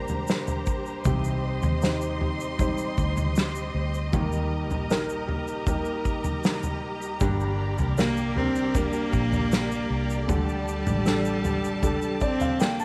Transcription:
Already playing: fingered electric bass F1, grand piano D3 D4 G4 A#4, nylon-string guitar G3 A#3 D4 G4, string section G4 A#4 C5 A#5
0.08 floor tom, shaker
0.27 nylon-string guitar G3 A#3 D4 G4, snare, shaker
0.47 floor tom, shaker
0.66 kick, shaker
0.86 shaker
1.04 fingered electric bass C2, nylon-string guitar C3 G3 C4 D#4 G4, grand piano C3, string section D#5 C6, kick, floor tom, shaker
1.24 shaker
1.62 fingered electric bass D#2, floor tom, shaker
1.82 grand piano D#4 G4 C5, snare, shaker
2.01 shaker
2.20 nylon-string guitar C4 D#4 G4, floor tom
2.40 shaker
2.58 nylon-string guitar G3 C4 D#4 G4, grand piano D#4 G4 C5, kick, floor tom, shaker
2.78 shaker
2.97 fingered electric bass D2, kick, shaker
3.17 floor tom, shaker
3.35 nylon-string guitar G3 C4 D#4 G4, snare, shaker
3.55 shaker
3.74 fingered electric bass D2
3.94 shaker
4.12 fingered electric bass D#2, nylon-string guitar D#3 G3 A#3 D#4 G4, grand piano D#3, string section G4 A#4 A#5, kick, floor tom, shaker
4.32 shaker
4.70 fingered electric bass A#1, floor tom, shaker
4.90 grand piano D#4 G4 A#4, snare, shaker
5.09 shaker
5.27 nylon-string guitar A#3 D#4 G4, floor tom
5.47 shaker
5.66 nylon-string guitar G3 A#3 D#4 G4, grand piano D#4 G4 A#4, kick, floor tom, shaker
5.85 shaker
6.05 kick, shaker
6.24 floor tom, shaker
6.43 nylon-string guitar G3 A#3 D#4 G4, snare, shaker
6.63 floor tom, shaker
7.02 shaker
7.20 fingered electric bass G1, nylon-string guitar G2 D3 G3 A#3 D4 G4, grand piano G3, string section A#4 D5, kick, floor tom, shaker
7.40 shaker
7.78 fingered electric bass C2, floor tom, shaker
7.97 cello A#3, grand piano D4 G4 A#4, snare, shaker
8.17 shaker
8.35 nylon-string guitar G3 A#3 D4 G4, cello C4, floor tom
8.55 shaker
8.74 nylon-string guitar G3 A#3 D4 G4, cello A#3, grand piano D4 G4 A#4, kick, floor tom, shaker
8.93 shaker
9.13 fingered electric bass A#1, kick, shaker
9.32 floor tom, shaker
9.50 nylon-string guitar G3 A#3 D4 G4, snare, shaker
9.72 shaker
9.90 fingered electric bass C2
10.10 shaker
10.28 fingered electric bass D2, grand piano D3, nylon-string guitar D3 G3 D4 G4 A4, cello G3, string section A4 A5, kick, floor tom, shaker
10.49 shaker
10.68 shaker
10.86 fingered electric bass A1, floor tom, shaker
11.05 grand piano D4 G4 A4, snare, shaker
11.25 shaker
11.43 nylon-string guitar D4 G4 A4, floor tom, shaker
11.64 shaker
11.82 nylon-string guitar G3 D4 G4 A4, grand piano D4 G4 A4, kick, floor tom, shaker
12.02 shaker
12.21 cello C4, grand piano D5, kick, shaker
12.40 grand piano F5, floor tom, shaker
12.59 nylon-string guitar G3 D4 G4 A4, cello A#3, grand piano G5, snare, shaker
12.79 grand piano A5, shaker

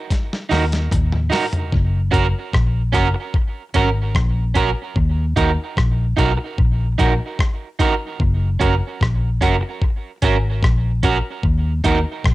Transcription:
0.10 kick, snare, closed hi-hat
0.33 snare
0.49 fingered electric bass D#2, clean electric guitar D#4 F#4 A#4, snare, open hi-hat
0.72 snare, closed hi-hat
0.92 fingered electric bass D#2, kick, closed hi-hat, mid tom
1.12 mid tom
1.30 clean electric guitar D#4 F#4 A#4, snare, open hi-hat
1.53 closed hi-hat, floor tom
1.72 fingered electric bass F#1, kick
2.11 fingered electric bass F#1, clean electric guitar C#4 F#4 A#4, kick, closed hi-hat
2.53 fingered electric bass A#1, kick, cross-stick
2.92 fingered electric bass F#1, clean electric guitar C#4 F#4 A#4, kick, cross-stick, closed hi-hat
3.14 muted clean electric guitar stroke
3.34 kick
3.74 fingered electric bass G#1, clean electric guitar C#4 F#4 A#4, kick, closed hi-hat
4.15 fingered electric bass A#1, kick, cross-stick
4.54 clean electric guitar C#4 F#4 A#4, kick, closed hi-hat
4.96 fingered electric bass D#2, kick
5.36 fingered electric bass D#2, clean electric guitar D#4 F#4 A#4, kick, closed hi-hat
5.77 fingered electric bass A#1, kick, cross-stick
6.17 fingered electric bass B1, clean electric guitar D#4 F#4 A#4, kick, closed hi-hat
6.37 muted clean electric guitar stroke
6.58 fingered electric bass A#1, kick
6.98 fingered electric bass A#1, clean electric guitar D#4 F#4 A#4, kick, closed hi-hat
7.39 kick, cross-stick
7.79 clean electric guitar D#4 F#4 A#4, kick, closed hi-hat
8.20 fingered electric bass F#1, kick
8.60 fingered electric bass F#1, clean electric guitar C#4 F#4 A#4, kick, closed hi-hat
9.01 fingered electric bass A#1, kick, cross-stick
9.41 fingered electric bass F#1, clean electric guitar C#4 F#4 A#4, kick, cross-stick, closed hi-hat
9.61 muted clean electric guitar stroke
9.82 kick
10.22 fingered electric bass G#1, clean electric guitar C#4 F#4 A#4, kick, closed hi-hat
10.63 fingered electric bass A#1, kick, cross-stick
11.03 clean electric guitar C#4 F#4 A#4, kick, closed hi-hat
11.43 fingered electric bass D#2, kick
11.84 fingered electric bass D#2, clean electric guitar D#4 F#4 A#4, kick, closed hi-hat
12.24 fingered electric bass A#1, kick, cross-stick

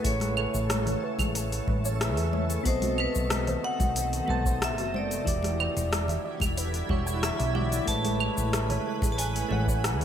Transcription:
Already playing: ambient pad C#3 A3, synth keys A3 E4 G#4 B4 F#5
0.03 fretless electric bass A1, synth keys A3 E4 G#4 B4, vibraphone C#5, kick, open hi-hat, shaker
0.07 synth keys C#5
0.20 synth pluck G#4, cross-stick, open hi-hat, high conga, shaker
0.37 synth pluck A4, claves
0.54 fretless electric bass A1, shaker
0.70 synth pluck B4, cross-stick, open hi-hat, high conga, shaker
0.86 synth pluck C#5, open hi-hat, low conga, shaker
1.03 synth pluck B4
1.19 fretless electric bass A1, synth pluck G#4, kick, open hi-hat, high conga, claves, shaker
1.35 synth pluck A4, open hi-hat, shaker
1.52 open hi-hat, shaker
1.67 fretless electric bass A1, synth pluck B4, kick, high conga
1.85 synth pluck C#5, shaker
2.00 synth keys A3 E4 G#4 B4 E5, cross-stick, open hi-hat, shaker
2.17 fretless electric bass E2, synth pluck G#4, open hi-hat, shaker
2.33 synth pluck C#5, high conga
2.50 open hi-hat, shaker
2.63 fretless electric bass B1, ambient pad C3 D#3, synth keys B3 C4 F#4 A4, vibraphone C5, kick, open hi-hat, shaker
2.68 synth keys D#5
2.82 synth pluck F#4, open hi-hat, high conga, shaker
2.98 synth pluck A4, vibraphone B4, claves
3.15 fretless electric bass B1, shaker
3.30 synth pluck B4, cross-stick, open hi-hat, high conga, shaker
3.47 synth pluck C5, open hi-hat, low conga, shaker
3.63 synth pluck B4, vibraphone F#5
3.80 fretless electric bass B1, synth pluck F#4, kick, open hi-hat, high conga, shaker
3.96 synth pluck A4, open hi-hat, shaker
4.13 open hi-hat, shaker
4.26 fretless electric bass B1, synth keys B3 F#4 A4 C5, synth pluck B4, high conga
4.30 synth keys A5
4.45 synth pluck C5, kick, shaker
4.62 vibraphone E5, cross-stick, open hi-hat, shaker
4.78 fretless electric bass F#1, synth pluck F#4, open hi-hat, shaker
4.94 synth pluck C5, vibraphone D5, high conga
5.11 open hi-hat, shaker
5.24 fretless electric bass E1, ambient pad D3 G3 E4, synth keys E3 E4 F#4 G4 D5, kick, open hi-hat, shaker
5.43 synth pluck G4, cross-stick, open hi-hat, high conga, shaker
5.60 synth pluck B4, claves
5.76 fretless electric bass E1, open hi-hat, shaker
5.92 synth pluck D5, cross-stick, open hi-hat, high conga, shaker
6.08 synth pluck E5, open hi-hat, low conga, shaker
6.25 synth pluck D5
6.40 fretless electric bass E1, synth pluck G4, kick, open hi-hat, high conga, claves, shaker
6.57 synth pluck B4, open hi-hat, shaker
6.74 open hi-hat, shaker
6.89 fretless electric bass E1, synth keys E3 E4 F#4 G4 C#5, synth pluck G4, kick, high conga
7.06 synth pluck G5, shaker
7.23 vibraphone E5, cross-stick, open hi-hat, shaker
7.39 fretless electric bass B1, synth pluck E5, open hi-hat, shaker
7.54 synth keys E3 E4 F#4 G4 D5, synth pluck E5, high conga
7.72 synth pluck D5, open hi-hat, shaker
7.86 fretless electric bass A1, ambient pad C#3 E3 B4, synth keys G#3 A3 E4 B4, vibraphone A5, kick, open hi-hat, shaker
7.90 synth keys C#5
8.04 synth pluck G#4, open hi-hat, high conga, shaker
8.20 synth pluck A4, claves
8.37 fretless electric bass A1, shaker
8.52 synth pluck B4, cross-stick, open hi-hat, high conga, shaker
8.69 synth pluck C#5, open hi-hat, low conga, shaker
8.86 synth pluck B4
9.02 fretless electric bass A1, synth pluck G#4, kick, open hi-hat, high conga, shaker
9.12 vibraphone A5
9.18 synth pluck A4, vibraphone G#5, open hi-hat, shaker
9.36 open hi-hat, shaker
9.49 fretless electric bass A1, synth keys A3 E4 G#4 B4 F#5, synth pluck C#5, high conga
9.67 synth pluck C#5, kick, shaker
9.84 cross-stick, open hi-hat, shaker
10.00 fretless electric bass E2, synth pluck G#4, open hi-hat, shaker

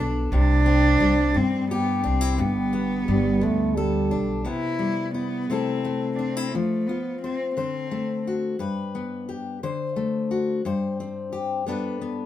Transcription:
Already playing: upright bass B1, steel-string acoustic guitar B2 G3 B3 A4
0.00 steel-string acoustic guitar D4
0.32 upright bass C2, steel-string acoustic guitar C3, cello D4
0.66 steel-string acoustic guitar C4
1.00 upright bass C2, steel-string acoustic guitar G3
1.34 steel-string acoustic guitar G2, upright bass G2, cello C4
1.71 cello B3, steel-string acoustic guitar G4
1.99 cello B3
2.04 upright bass C2, cello C4, steel-string acoustic guitar D4
2.21 steel-string acoustic guitar E4
2.38 upright bass G1, steel-string acoustic guitar G2, cello B3
2.73 steel-string acoustic guitar B3
3.08 upright bass G1, steel-string acoustic guitar G3, french horn G3
3.41 upright bass D2, steel-string acoustic guitar D3, french horn A3
3.77 french horn G3, steel-string acoustic guitar A4
4.11 upright bass B1, steel-string acoustic guitar D4
4.45 steel-string acoustic guitar C3 B3, cello E4
4.79 steel-string acoustic guitar G3
5.14 cello B3, steel-string acoustic guitar E4
5.50 steel-string acoustic guitar C3 A3 C4 E4 A4, cello C4
5.85 steel-string acoustic guitar A3
6.15 cello C4 D4, steel-string acoustic guitar D4
6.37 steel-string acoustic guitar E4
6.53 steel-string acoustic guitar F3, cello A3
6.87 cello B3, steel-string acoustic guitar F4
7.22 cello C4, steel-string acoustic guitar C5
7.56 steel-string acoustic guitar D3 C5, cello C4
7.91 steel-string acoustic guitar A3
8.27 steel-string acoustic guitar F#4
8.59 steel-string acoustic guitar G2 B4
8.95 steel-string acoustic guitar B3
9.29 steel-string acoustic guitar G4
9.63 steel-string acoustic guitar D3 C5
9.96 steel-string acoustic guitar A3
10.31 steel-string acoustic guitar F#4
10.65 steel-string acoustic guitar G2 C5
11.00 steel-string acoustic guitar C4
11.32 steel-string acoustic guitar G4
11.67 steel-string acoustic guitar G2 B3 D4 A4 B4
12.01 steel-string acoustic guitar B3

